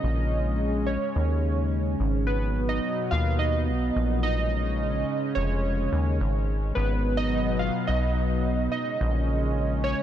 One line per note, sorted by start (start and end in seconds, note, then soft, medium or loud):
0.00 0.98 A#1 medium
0.00 2.26 C#3 medium
0.00 2.26 G#3 medium
0.00 2.26 C#4 medium
0.00 0.91 D#5 loud
0.86 1.67 C#5 medium
1.16 1.96 D#2 medium
2.00 2.80 G#1 loud
2.27 4.23 B2 medium
2.27 4.23 F#3 medium
2.27 4.23 B3 medium
2.27 2.71 B4 loud
2.69 3.13 D#5 loud
3.11 3.70 D#2 loud
3.11 3.40 F5 loud
3.39 4.20 D#5 loud
3.68 3.92 B1 medium
3.96 5.05 A#1 medium
4.23 6.74 C#3 medium
4.23 6.74 G#3 medium
4.23 6.74 C#4 medium
4.23 5.32 D#5 loud
5.35 5.89 F1 loud
5.35 6.16 C#5 medium
5.93 6.20 D#2 medium
6.21 6.73 G#1 medium
6.75 7.71 G#1 medium
6.75 8.71 B2 medium
6.75 8.71 F#3 medium
6.75 8.71 B3 medium
6.75 7.19 B4 loud
7.17 7.61 D#5 loud
7.59 7.89 F5 loud
7.87 8.69 B1 medium
7.87 8.68 D#5 loud
8.72 10.03 C#3 medium
8.72 10.03 G#3 medium
8.72 10.03 C#4 medium
8.72 9.88 D#5 loud
9.01 9.95 A#1 loud
9.84 10.03 C#5 medium